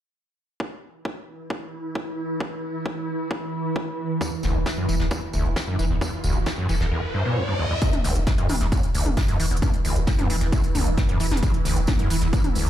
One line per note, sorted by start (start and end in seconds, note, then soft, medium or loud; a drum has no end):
0.60 6.92 E3 medium
0.60 6.92 E4 medium
0.60 kick loud
1.05 kick loud
1.50 kick loud
1.95 kick loud
2.40 kick loud
2.86 kick loud
3.31 kick loud
3.76 kick loud
4.21 4.30 E2 medium
4.21 kick loud
4.21 tambourine medium
4.21 riser medium
4.43 4.54 E1 loud
4.43 4.56 D2 loud
4.43 snare soft
4.43 tambourine medium
4.55 4.66 E1 medium
4.55 4.58 E2 loud
4.66 4.70 E3 medium
4.66 kick loud
4.66 snare loud
4.66 tambourine medium
4.77 4.87 F#2 loud
4.88 4.99 E1 medium
4.88 4.95 E3 medium
4.88 tambourine medium
5.00 5.11 E1 medium
5.00 5.06 E2 medium
5.00 snare soft
5.11 5.20 E2 loud
5.11 kick loud
5.11 tambourine medium
5.33 5.44 E1 medium
5.33 5.46 D2 loud
5.33 tambourine medium
5.45 5.56 E1 medium
5.45 5.49 E2 loud
5.45 closed hi-hat soft
5.56 5.60 E3 medium
5.56 kick loud
5.56 snare loud
5.56 tambourine medium
5.67 5.77 F#2 loud
5.79 5.90 E1 loud
5.79 5.85 E3 medium
5.79 tambourine medium
5.90 6.01 E1 medium
5.90 5.96 E2 medium
6.01 6.11 E2 medium
6.01 kick loud
6.01 tambourine medium
6.12 closed hi-hat soft
6.24 6.35 E1 loud
6.24 6.37 D2 loud
6.24 tambourine medium
6.35 6.46 E1 medium
6.35 6.39 E2 medium
6.46 6.50 E3 medium
6.46 kick loud
6.46 snare loud
6.46 tambourine medium
6.58 6.67 F#2 loud
6.69 6.80 E1 loud
6.69 6.75 E3 medium
6.69 tambourine medium
6.80 6.91 E1 medium
6.80 6.87 E2 medium
6.80 snare medium
6.92 7.01 E2 loud
7.14 7.24 G2 loud
7.25 7.38 B2 loud
7.37 7.43 E2 medium
7.48 7.54 G2 medium
7.59 7.65 E2 loud
7.71 7.74 E2 loud
7.82 7.91 E2 medium
7.82 12.70 E3 medium
7.82 12.70 E4 medium
7.82 kick loud
7.82 closed hi-hat medium
7.82 tambourine medium
7.93 closed hi-hat medium
7.93 mid tom medium
8.04 8.15 E1 loud
8.04 8.17 D2 loud
8.04 snare soft
8.04 open hi-hat loud
8.04 tambourine medium
8.16 8.27 E1 medium
8.16 8.19 E2 loud
8.16 closed hi-hat medium
8.27 8.31 E3 medium
8.27 kick loud
8.27 snare loud
8.27 closed hi-hat medium
8.27 tambourine medium
8.38 8.48 F#2 loud
8.38 closed hi-hat medium
8.49 8.60 E1 medium
8.49 8.56 E3 medium
8.49 open hi-hat loud
8.49 mid tom medium
8.49 tambourine medium
8.61 8.72 E1 medium
8.61 8.67 E2 medium
8.61 snare soft
8.61 closed hi-hat medium
8.72 8.81 E2 loud
8.72 kick loud
8.72 closed hi-hat medium
8.72 tambourine medium
8.83 closed hi-hat medium
8.95 9.05 E1 loud
8.95 9.07 D2 loud
8.95 open hi-hat loud
8.95 tambourine medium
9.06 9.17 E1 medium
9.06 9.10 E2 loud
9.06 closed hi-hat soft
9.06 closed hi-hat medium
9.06 mid tom medium
9.17 9.21 E3 medium
9.17 kick loud
9.17 snare loud
9.17 closed hi-hat medium
9.17 tambourine medium
9.28 9.38 F#2 loud
9.28 closed hi-hat medium
9.40 9.50 E1 loud
9.40 9.46 E3 medium
9.40 open hi-hat loud
9.40 tambourine medium
9.51 9.62 E1 medium
9.51 9.57 E2 medium
9.51 closed hi-hat medium
9.57 closed hi-hat medium
9.62 9.72 E2 loud
9.62 kick loud
9.62 closed hi-hat medium
9.62 mid tom medium
9.62 tambourine medium
9.74 closed hi-hat medium
9.74 closed hi-hat soft
9.85 9.95 E1 loud
9.85 9.98 D2 loud
9.85 open hi-hat loud
9.85 tambourine medium
9.96 10.07 E1 medium
9.96 10.00 E2 loud
9.96 closed hi-hat medium
10.07 10.11 E3 medium
10.07 kick loud
10.07 snare loud
10.07 closed hi-hat medium
10.07 tambourine medium
10.19 10.28 F#2 loud
10.19 closed hi-hat medium
10.19 mid tom medium
10.30 10.41 E1 medium
10.30 10.36 E3 medium
10.30 open hi-hat loud
10.30 tambourine medium
10.41 10.52 E1 medium
10.41 10.47 E2 medium
10.41 snare soft
10.41 closed hi-hat medium
10.52 10.62 E2 loud
10.52 kick loud
10.52 closed hi-hat medium
10.52 tambourine medium
10.64 closed hi-hat medium
10.75 10.86 E1 loud
10.75 10.88 D2 loud
10.75 open hi-hat loud
10.75 mid tom medium
10.75 tambourine medium
10.86 10.97 E1 medium
10.86 10.90 E2 loud
10.86 closed hi-hat medium
10.97 11.01 E3 medium
10.97 kick loud
10.97 snare loud
10.97 closed hi-hat medium
10.97 tambourine medium
11.09 11.18 F#2 loud
11.09 closed hi-hat medium
11.20 11.31 E1 loud
11.20 11.26 E3 medium
11.20 open hi-hat loud
11.20 tambourine medium
11.31 11.42 E1 medium
11.31 11.38 E2 medium
11.31 snare medium
11.31 closed hi-hat soft
11.31 mid tom medium
11.37 closed hi-hat medium
11.43 11.52 E2 medium
11.43 kick loud
11.43 closed hi-hat medium
11.43 tambourine medium
11.54 closed hi-hat medium
11.65 11.76 E1 loud
11.65 11.78 D2 loud
11.65 snare soft
11.65 open hi-hat loud
11.65 tambourine medium
11.76 11.88 E1 medium
11.76 11.80 E2 loud
11.76 closed hi-hat medium
11.87 11.92 E3 medium
11.87 kick loud
11.87 snare loud
11.87 closed hi-hat medium
11.87 mid tom medium
11.87 tambourine medium
11.99 12.08 F#2 loud
11.99 closed hi-hat medium
12.10 12.21 E1 medium
12.10 12.17 E3 medium
12.10 open hi-hat loud
12.10 tambourine medium
12.22 12.33 E1 medium
12.22 12.28 E2 medium
12.22 snare soft
12.22 closed hi-hat medium
12.33 12.42 E2 loud
12.33 kick loud
12.33 closed hi-hat medium
12.33 tambourine medium
12.44 closed hi-hat medium
12.44 mid tom medium
12.55 12.66 E1 medium
12.55 12.68 D2 loud
12.55 open hi-hat loud
12.55 tambourine medium
12.67 12.70 E2 loud